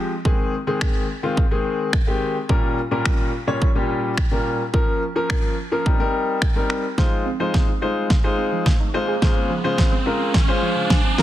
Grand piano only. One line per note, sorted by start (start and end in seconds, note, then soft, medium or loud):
0.00 0.11 F3 medium
0.00 0.11 G#3 medium
0.00 0.11 C4 medium
0.00 0.11 G4 medium
0.25 0.53 D#3 medium
0.25 0.53 G#3 medium
0.25 0.53 C4 medium
0.25 0.53 G#4 loud
0.67 1.05 D#3 medium
0.67 1.05 G#3 medium
0.67 1.05 C4 medium
0.67 1.05 G#4 medium
1.23 1.42 D#3 medium
1.23 1.42 G#3 medium
1.23 1.42 C4 medium
1.23 1.42 F4 medium
1.51 1.89 D#3 medium
1.51 1.89 G#3 medium
1.51 1.89 C4 medium
1.51 1.89 G#4 medium
2.07 2.35 D#3 medium
2.07 2.35 G#3 medium
2.07 2.36 C4 medium
2.07 2.36 G4 medium
2.49 2.77 A#2 medium
2.49 2.78 G3 medium
2.49 2.78 A#3 medium
2.49 2.78 C#4 medium
2.49 2.78 A#4 medium
2.91 3.29 A#2 medium
2.91 3.29 G3 medium
2.91 3.29 A#3 medium
2.91 3.29 C#4 medium
2.91 3.29 A#4 medium
3.47 3.66 A#2 medium
3.47 3.66 G3 medium
3.47 3.66 A#3 medium
3.47 3.66 C#4 medium
3.47 3.66 C#5 medium
3.75 4.13 A#2 medium
3.75 4.13 G3 medium
3.75 4.13 A#3 medium
3.75 4.13 C#4 medium
3.75 4.13 G4 medium
4.31 4.60 A#2 medium
4.31 4.60 G3 medium
4.31 4.60 A#3 medium
4.31 4.60 C#4 medium
4.31 4.60 A#4 medium
4.73 5.02 F3 medium
4.73 5.02 A#3 medium
4.73 5.02 C#4 medium
4.73 5.02 A#4 medium
5.16 5.53 F3 medium
5.16 5.53 A#3 medium
5.16 5.53 C#4 medium
5.16 5.54 A#4 medium
5.72 5.86 F3 medium
5.72 5.86 A#3 medium
5.72 5.86 C#4 medium
5.72 5.85 A#4 medium
5.86 5.97 G3 medium
5.86 5.97 C4 medium
5.86 5.97 D#4 medium
5.86 5.97 A#4 medium
6.00 6.37 G3 medium
6.00 6.37 C4 medium
6.00 6.38 D#4 medium
6.00 6.38 A#4 medium
6.56 6.84 G3 medium
6.56 6.84 C4 medium
6.56 6.84 D#4 medium
6.56 6.84 A#4 medium
6.98 7.26 G#3 medium
6.98 7.26 D#4 medium
6.98 7.26 F4 medium
6.98 7.26 C5 medium
7.40 7.68 G#3 medium
7.40 7.68 D#4 medium
7.40 7.68 F4 medium
7.40 7.68 C5 medium
7.82 8.10 G#3 medium
7.82 8.10 D#4 medium
7.82 8.10 F4 medium
7.82 8.10 C5 medium
8.24 8.71 G#3 medium
8.24 8.71 D#4 medium
8.24 8.71 F4 medium
8.24 8.71 C5 medium
8.94 9.13 G#3 medium
8.94 9.13 D#4 medium
8.94 9.13 F4 medium
8.94 9.13 C5 medium
9.22 9.50 G#3 medium
9.22 9.50 C#4 medium
9.22 9.50 F4 medium
9.22 9.51 C5 medium
9.64 9.92 G#3 medium
9.64 9.92 C#4 medium
9.64 9.93 F4 medium
9.64 9.93 C5 medium
10.06 10.34 G#3 medium
10.06 10.34 C#4 medium
10.06 10.35 F4 medium
10.06 10.35 A#4 medium
10.48 10.95 G#3 medium
10.48 10.95 C#4 medium
10.48 10.95 F4 medium
10.48 10.96 C5 loud
10.62 10.88 F5 medium
10.90 11.16 G#5 medium
11.18 11.22 G#3 medium
11.18 11.22 C#4 medium
11.18 11.22 F4 medium
11.18 11.22 A#4 loud
11.18 11.22 A#5 medium